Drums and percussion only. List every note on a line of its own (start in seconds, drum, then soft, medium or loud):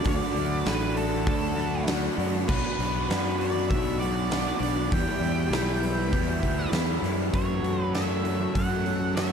0.04 kick loud
0.04 open hi-hat loud
0.36 open hi-hat medium
0.66 snare loud
0.66 open hi-hat medium
0.97 open hi-hat medium
1.27 kick loud
1.27 open hi-hat medium
1.57 open hi-hat soft
1.87 snare loud
1.87 open hi-hat medium
2.19 open hi-hat medium
2.49 kick loud
2.49 crash loud
2.80 open hi-hat medium
3.10 snare loud
3.10 open hi-hat medium
3.41 open hi-hat medium
3.71 kick loud
3.71 open hi-hat medium
4.02 open hi-hat soft
4.31 snare loud
4.31 open hi-hat medium
4.63 snare soft
4.63 open hi-hat medium
4.92 kick loud
4.92 open hi-hat medium
5.23 open hi-hat medium
5.53 snare loud
5.53 open hi-hat medium
5.83 open hi-hat medium
6.13 kick loud
6.13 open hi-hat medium
6.43 kick medium
6.43 open hi-hat soft
6.73 snare loud
6.73 open hi-hat medium
7.04 snare soft
7.04 open hi-hat medium
7.34 kick loud
7.34 open hi-hat medium
7.64 open hi-hat soft
7.95 snare loud
7.95 open hi-hat medium
8.25 open hi-hat medium
8.55 kick loud
8.55 open hi-hat medium
8.86 open hi-hat soft
9.17 snare loud
9.17 open hi-hat medium